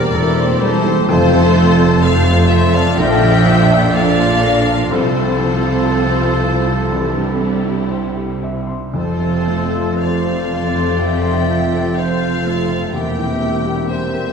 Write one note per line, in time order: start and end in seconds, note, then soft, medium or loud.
0.00 1.04 E2 medium
0.00 0.15 G3 medium
0.00 0.15 A#3 medium
0.00 0.36 C4 medium
0.00 0.15 G4 medium
0.00 1.10 G4 medium
0.00 0.14 A#4 medium
0.00 0.37 A#4 loud
0.00 0.15 C5 medium
0.00 1.11 C5 medium
0.00 0.62 D5 loud
0.00 1.11 A#5 medium
0.13 0.97 E1 loud
0.13 0.97 E1 medium
0.13 0.97 E2 medium
0.13 0.37 E3 medium
0.13 0.37 C4 medium
0.13 0.58 A4 loud
0.13 0.52 A#4 medium
0.18 0.38 E4 medium
0.18 0.38 A#4 medium
0.36 0.62 G3 medium
0.36 0.62 A#3 medium
0.36 0.75 C4 medium
0.41 0.63 G4 medium
0.41 0.63 C5 medium
0.60 0.85 E3 medium
0.60 0.98 G3 medium
0.60 0.86 C4 medium
0.60 1.10 G4 medium
0.60 1.06 A4 medium
0.60 1.08 C5 loud
0.65 0.87 E4 medium
0.65 0.87 A#4 medium
0.84 1.08 E3 medium
0.84 1.09 G3 medium
0.84 1.09 A#3 medium
0.88 1.11 G4 medium
0.88 1.10 C5 medium
1.07 2.94 F1 loud
1.07 2.94 F2 loud
1.07 1.44 C3 medium
1.07 1.44 F3 medium
1.07 2.00 A3 loud
1.07 1.44 C4 medium
1.07 2.00 C4 medium
1.07 2.04 F4 loud
1.07 2.01 A4 loud
1.07 1.44 A4 medium
1.07 2.01 C5 loud
1.13 2.01 F4 medium
1.13 2.01 A4 medium
1.31 1.69 C3 medium
1.55 1.93 F3 medium
1.80 2.18 C4 medium
2.03 2.96 A3 medium
2.03 2.96 C4 medium
2.03 2.98 F4 medium
2.03 3.00 A4 loud
2.03 2.42 A4 medium
2.03 2.98 A4 medium
2.03 2.49 C5 loud
2.03 2.51 F5 loud
2.29 2.66 F4 medium
2.50 2.74 C5 loud
2.50 2.89 C5 medium
2.50 2.74 E5 loud
2.74 2.98 D5 loud
2.74 2.98 F5 loud
2.74 2.98 A5 medium
2.97 4.87 A#1 loud
2.97 4.87 A#1 medium
2.97 4.88 A#1 medium
2.97 3.33 A#2 medium
2.97 4.87 A#2 loud
2.97 3.92 F3 loud
2.97 3.33 F3 medium
2.97 3.91 D4 loud
2.97 3.34 D4 medium
2.97 3.92 F4 medium
2.97 3.34 A4 medium
2.97 3.91 A4 medium
2.97 3.47 A#4 medium
2.97 3.91 E5 loud
2.97 3.92 G5 loud
3.22 3.60 F2 medium
3.46 3.84 F3 medium
3.46 3.96 C5 medium
3.71 4.08 D4 medium
3.92 4.89 F3 medium
3.92 4.89 D4 medium
3.92 4.90 F4 medium
3.92 4.33 A4 medium
3.92 4.90 A4 medium
3.92 4.91 D5 loud
3.92 4.44 D5 loud
3.92 4.91 F5 loud
4.20 4.58 F4 medium
4.42 4.90 A#4 medium
4.42 4.82 D5 medium
4.67 4.91 A5 medium
4.88 8.69 C2 medium
4.88 6.89 C2 medium
4.88 5.28 C3 medium
4.88 8.70 C3 medium
4.88 5.28 F3 medium
4.88 6.89 F3 medium
4.88 6.90 C4 medium
4.88 5.29 C4 medium
4.88 8.39 A4 medium
4.88 5.29 A4 medium
4.88 7.93 C5 loud
4.93 6.90 F4 medium
4.93 7.90 A4 medium
4.93 6.90 A4 medium
5.15 5.55 C3 medium
5.39 5.80 F3 medium
5.63 6.05 F4 medium
5.89 6.31 A4 medium
6.16 6.57 F4 medium
6.41 6.82 F5 medium
6.65 6.91 A5 medium
6.91 8.89 C2 medium
6.91 7.30 C3 medium
6.91 7.31 E3 medium
6.91 8.73 G3 medium
6.91 8.69 C4 medium
6.91 7.32 C4 medium
6.91 8.74 E4 medium
6.91 8.74 G4 medium
6.91 7.32 G4 medium
7.15 7.56 G2 soft
7.40 7.82 G3 soft
7.65 8.06 E4 medium
7.90 8.32 C5 soft
8.17 8.58 G4 soft
8.43 8.84 E5 medium
8.67 8.94 C6 soft
8.92 12.89 F1 medium
8.92 12.96 F1 medium
8.92 12.89 F2 medium
8.92 12.90 F2 medium
8.92 12.88 C3 medium
8.92 12.89 F3 medium
8.92 9.98 F3 medium
8.92 12.89 C4 medium
8.92 9.98 C4 medium
8.92 9.99 F4 medium
8.92 12.89 A4 medium
8.92 9.98 A4 medium
8.92 10.03 A4 medium
8.92 9.98 C5 medium
8.96 9.99 A4 medium
9.19 9.64 C3 medium
9.47 9.91 A3 medium
9.73 10.16 F4 medium
10.01 11.94 F3 medium
10.01 11.94 C4 medium
10.01 11.94 F4 medium
10.01 11.94 A4 medium
10.01 10.42 C5 medium
10.01 11.00 C5 medium
10.01 12.00 D5 medium
10.01 11.01 F5 medium
10.27 10.67 A4 soft
10.52 10.91 F5 medium
10.76 11.14 C6 medium
10.99 11.96 E5 medium
10.99 11.38 F5 medium
10.99 11.97 G5 medium
11.24 11.63 C6 medium
11.47 11.86 F5 soft
11.73 12.12 A4 medium
11.98 12.92 F3 medium
11.98 12.92 C4 medium
11.98 12.93 F4 medium
11.98 12.92 A4 medium
11.98 12.36 C5 soft
11.98 12.48 C5 medium
11.98 12.94 C5 medium
11.98 12.94 F5 medium
12.21 12.60 F4 medium
12.46 12.84 A3 soft
12.46 12.94 A4 medium
12.68 12.93 C3 soft
12.93 14.33 E1 medium
12.93 14.33 E2 medium
12.93 14.33 C3 medium
12.93 14.33 G3 medium
12.93 13.88 A#3 medium
12.93 14.33 C4 medium
12.93 13.88 C4 medium
12.93 13.91 G4 medium
12.93 13.90 G4 medium
12.93 14.33 A#4 medium
12.93 13.87 E5 medium
12.93 13.89 G5 medium
13.18 13.55 E3 soft
13.41 13.79 A#3 soft
13.66 14.04 G4 medium
13.90 14.33 A#3 medium
13.90 14.33 C4 medium
13.90 14.33 G4 medium
13.90 14.33 C5 medium
13.90 14.28 C5 medium
13.90 14.33 C5 medium
13.90 14.33 E5 medium
14.14 14.33 A#4 soft